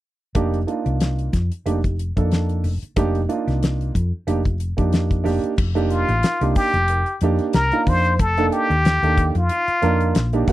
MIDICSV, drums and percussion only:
0, 0, Header, 1, 2, 480
1, 0, Start_track
1, 0, Tempo, 652884
1, 262, Time_signature, 4, 2, 24, 8
1, 7737, End_track
2, 0, Start_track
2, 0, Title_t, "Drums"
2, 257, Note_on_c, 9, 42, 60
2, 259, Note_on_c, 9, 36, 81
2, 330, Note_off_c, 9, 42, 0
2, 333, Note_off_c, 9, 36, 0
2, 395, Note_on_c, 9, 42, 32
2, 468, Note_off_c, 9, 42, 0
2, 501, Note_on_c, 9, 42, 44
2, 574, Note_off_c, 9, 42, 0
2, 632, Note_on_c, 9, 42, 31
2, 705, Note_off_c, 9, 42, 0
2, 739, Note_on_c, 9, 42, 72
2, 747, Note_on_c, 9, 38, 89
2, 812, Note_off_c, 9, 42, 0
2, 820, Note_off_c, 9, 38, 0
2, 872, Note_on_c, 9, 42, 32
2, 946, Note_off_c, 9, 42, 0
2, 980, Note_on_c, 9, 36, 58
2, 980, Note_on_c, 9, 42, 51
2, 988, Note_on_c, 9, 38, 27
2, 1053, Note_off_c, 9, 42, 0
2, 1054, Note_off_c, 9, 36, 0
2, 1061, Note_off_c, 9, 38, 0
2, 1114, Note_on_c, 9, 42, 36
2, 1188, Note_off_c, 9, 42, 0
2, 1224, Note_on_c, 9, 42, 63
2, 1298, Note_off_c, 9, 42, 0
2, 1354, Note_on_c, 9, 36, 66
2, 1356, Note_on_c, 9, 42, 32
2, 1428, Note_off_c, 9, 36, 0
2, 1430, Note_off_c, 9, 42, 0
2, 1466, Note_on_c, 9, 42, 56
2, 1539, Note_off_c, 9, 42, 0
2, 1594, Note_on_c, 9, 36, 67
2, 1596, Note_on_c, 9, 42, 34
2, 1668, Note_off_c, 9, 36, 0
2, 1669, Note_off_c, 9, 42, 0
2, 1702, Note_on_c, 9, 42, 60
2, 1711, Note_on_c, 9, 38, 79
2, 1776, Note_off_c, 9, 42, 0
2, 1784, Note_off_c, 9, 38, 0
2, 1833, Note_on_c, 9, 42, 31
2, 1906, Note_off_c, 9, 42, 0
2, 1942, Note_on_c, 9, 46, 61
2, 2015, Note_off_c, 9, 46, 0
2, 2075, Note_on_c, 9, 42, 34
2, 2149, Note_off_c, 9, 42, 0
2, 2179, Note_on_c, 9, 42, 67
2, 2182, Note_on_c, 9, 36, 85
2, 2252, Note_off_c, 9, 42, 0
2, 2255, Note_off_c, 9, 36, 0
2, 2316, Note_on_c, 9, 42, 30
2, 2389, Note_off_c, 9, 42, 0
2, 2423, Note_on_c, 9, 42, 46
2, 2497, Note_off_c, 9, 42, 0
2, 2558, Note_on_c, 9, 42, 29
2, 2566, Note_on_c, 9, 38, 24
2, 2631, Note_off_c, 9, 42, 0
2, 2640, Note_off_c, 9, 38, 0
2, 2666, Note_on_c, 9, 42, 69
2, 2675, Note_on_c, 9, 38, 89
2, 2740, Note_off_c, 9, 42, 0
2, 2748, Note_off_c, 9, 38, 0
2, 2800, Note_on_c, 9, 42, 29
2, 2874, Note_off_c, 9, 42, 0
2, 2904, Note_on_c, 9, 36, 60
2, 2909, Note_on_c, 9, 42, 50
2, 2978, Note_off_c, 9, 36, 0
2, 2982, Note_off_c, 9, 42, 0
2, 3145, Note_on_c, 9, 42, 62
2, 3218, Note_off_c, 9, 42, 0
2, 3275, Note_on_c, 9, 36, 64
2, 3275, Note_on_c, 9, 42, 29
2, 3348, Note_off_c, 9, 36, 0
2, 3348, Note_off_c, 9, 42, 0
2, 3383, Note_on_c, 9, 42, 52
2, 3456, Note_off_c, 9, 42, 0
2, 3513, Note_on_c, 9, 42, 31
2, 3514, Note_on_c, 9, 36, 71
2, 3586, Note_off_c, 9, 42, 0
2, 3588, Note_off_c, 9, 36, 0
2, 3622, Note_on_c, 9, 42, 59
2, 3630, Note_on_c, 9, 38, 90
2, 3695, Note_off_c, 9, 42, 0
2, 3703, Note_off_c, 9, 38, 0
2, 3755, Note_on_c, 9, 36, 66
2, 3755, Note_on_c, 9, 42, 30
2, 3828, Note_off_c, 9, 36, 0
2, 3829, Note_off_c, 9, 42, 0
2, 3866, Note_on_c, 9, 46, 61
2, 3874, Note_on_c, 9, 38, 26
2, 3939, Note_off_c, 9, 46, 0
2, 3948, Note_off_c, 9, 38, 0
2, 3996, Note_on_c, 9, 42, 33
2, 4069, Note_off_c, 9, 42, 0
2, 4102, Note_on_c, 9, 49, 79
2, 4103, Note_on_c, 9, 36, 97
2, 4176, Note_off_c, 9, 49, 0
2, 4177, Note_off_c, 9, 36, 0
2, 4236, Note_on_c, 9, 42, 32
2, 4309, Note_off_c, 9, 42, 0
2, 4341, Note_on_c, 9, 42, 50
2, 4414, Note_off_c, 9, 42, 0
2, 4474, Note_on_c, 9, 42, 36
2, 4548, Note_off_c, 9, 42, 0
2, 4580, Note_on_c, 9, 42, 77
2, 4588, Note_on_c, 9, 38, 95
2, 4654, Note_off_c, 9, 42, 0
2, 4662, Note_off_c, 9, 38, 0
2, 4715, Note_on_c, 9, 42, 38
2, 4789, Note_off_c, 9, 42, 0
2, 4819, Note_on_c, 9, 46, 62
2, 4823, Note_on_c, 9, 36, 82
2, 4892, Note_off_c, 9, 46, 0
2, 4896, Note_off_c, 9, 36, 0
2, 4953, Note_on_c, 9, 42, 39
2, 5027, Note_off_c, 9, 42, 0
2, 5058, Note_on_c, 9, 42, 72
2, 5131, Note_off_c, 9, 42, 0
2, 5191, Note_on_c, 9, 42, 32
2, 5265, Note_off_c, 9, 42, 0
2, 5299, Note_on_c, 9, 42, 59
2, 5372, Note_off_c, 9, 42, 0
2, 5431, Note_on_c, 9, 42, 35
2, 5505, Note_off_c, 9, 42, 0
2, 5538, Note_on_c, 9, 42, 71
2, 5546, Note_on_c, 9, 38, 95
2, 5611, Note_off_c, 9, 42, 0
2, 5619, Note_off_c, 9, 38, 0
2, 5673, Note_on_c, 9, 42, 33
2, 5747, Note_off_c, 9, 42, 0
2, 5783, Note_on_c, 9, 46, 72
2, 5784, Note_on_c, 9, 36, 77
2, 5856, Note_off_c, 9, 46, 0
2, 5858, Note_off_c, 9, 36, 0
2, 5915, Note_on_c, 9, 42, 35
2, 5989, Note_off_c, 9, 42, 0
2, 6024, Note_on_c, 9, 42, 70
2, 6025, Note_on_c, 9, 36, 90
2, 6097, Note_off_c, 9, 42, 0
2, 6099, Note_off_c, 9, 36, 0
2, 6157, Note_on_c, 9, 42, 35
2, 6230, Note_off_c, 9, 42, 0
2, 6266, Note_on_c, 9, 42, 51
2, 6340, Note_off_c, 9, 42, 0
2, 6400, Note_on_c, 9, 42, 30
2, 6474, Note_off_c, 9, 42, 0
2, 6508, Note_on_c, 9, 42, 75
2, 6516, Note_on_c, 9, 38, 106
2, 6581, Note_off_c, 9, 42, 0
2, 6589, Note_off_c, 9, 38, 0
2, 6640, Note_on_c, 9, 42, 36
2, 6714, Note_off_c, 9, 42, 0
2, 6745, Note_on_c, 9, 42, 54
2, 6746, Note_on_c, 9, 36, 77
2, 6819, Note_off_c, 9, 36, 0
2, 6819, Note_off_c, 9, 42, 0
2, 6874, Note_on_c, 9, 42, 36
2, 6947, Note_off_c, 9, 42, 0
2, 6980, Note_on_c, 9, 42, 68
2, 7054, Note_off_c, 9, 42, 0
2, 7115, Note_on_c, 9, 42, 33
2, 7189, Note_off_c, 9, 42, 0
2, 7223, Note_on_c, 9, 42, 53
2, 7297, Note_off_c, 9, 42, 0
2, 7356, Note_on_c, 9, 42, 34
2, 7429, Note_off_c, 9, 42, 0
2, 7462, Note_on_c, 9, 42, 68
2, 7470, Note_on_c, 9, 38, 97
2, 7535, Note_off_c, 9, 42, 0
2, 7543, Note_off_c, 9, 38, 0
2, 7594, Note_on_c, 9, 42, 35
2, 7667, Note_off_c, 9, 42, 0
2, 7702, Note_on_c, 9, 36, 75
2, 7702, Note_on_c, 9, 46, 68
2, 7737, Note_off_c, 9, 36, 0
2, 7737, Note_off_c, 9, 46, 0
2, 7737, End_track
0, 0, End_of_file